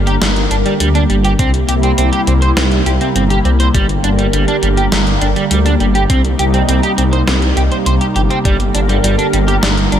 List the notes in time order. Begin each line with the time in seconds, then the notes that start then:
Already playing: G1 D3 G3 A#3 G4 A#4
0.07 G4, closed hi-hat
0.22 G1 G3, snare, closed hi-hat
0.36 closed hi-hat
0.51 G1 D4, closed hi-hat
0.66 G3, closed hi-hat
0.80 D2 G3, closed hi-hat
0.95 D4, closed hi-hat
1.10 G1 G3, closed hi-hat
1.25 G4, closed hi-hat
1.39 C2 C3 C4 E4, kick, closed hi-hat
1.54 closed hi-hat
1.69 C2 G4, closed hi-hat
1.83 C4, closed hi-hat
1.98 C2 C4, closed hi-hat
2.13 G4, closed hi-hat
2.27 C2 C4, closed hi-hat
2.42 C5, closed hi-hat
2.57 C2 C4, snare, closed hi-hat
2.72 closed hi-hat
2.86 C2 G4, closed hi-hat
3.01 C4, closed hi-hat
3.16 G1 C4, closed hi-hat
3.30 G4, closed hi-hat
3.45 C2 C4, closed hi-hat
3.60 C5, closed hi-hat
3.75 G1 D3 G3 A#4, kick, closed hi-hat
3.89 closed hi-hat
4.04 G1 D4, closed hi-hat
4.19 G3, closed hi-hat
4.33 G1 G3, closed hi-hat
4.48 D4, closed hi-hat
4.63 G1 G3, closed hi-hat
4.77 G4, closed hi-hat
4.92 G1 G3, snare, closed hi-hat
5.07 closed hi-hat
5.22 G1 D4, closed hi-hat
5.36 G3, closed hi-hat
5.51 D2 G3, closed hi-hat
5.66 D4, closed hi-hat
5.80 G1 G3, closed hi-hat
5.95 G4, closed hi-hat
6.10 C2 C3 C4 D#4, kick, closed hi-hat
6.25 closed hi-hat
6.39 C2 G4, closed hi-hat
6.54 C4, closed hi-hat
6.69 C2 C4, closed hi-hat
6.83 G4, closed hi-hat
6.98 C2 C4, closed hi-hat
7.13 C5, closed hi-hat
7.27 C2 C4, snare, closed hi-hat
7.42 closed hi-hat
7.57 C2 G4, closed hi-hat
7.72 C5, closed hi-hat
7.86 C2 C5, closed hi-hat
8.01 G4, closed hi-hat
8.16 G1 G4, closed hi-hat
8.30 C4, closed hi-hat
8.45 G1 D3 G3 A#3 A#4, kick, closed hi-hat
8.60 closed hi-hat
8.74 G1 D4, closed hi-hat
8.89 G3, closed hi-hat
9.04 G1 G3, closed hi-hat
9.18 D4, closed hi-hat
9.33 G1 G3, closed hi-hat
9.48 G4, closed hi-hat
9.63 G1 G3, snare, closed hi-hat
9.78 closed hi-hat
9.92 G1 D4, closed hi-hat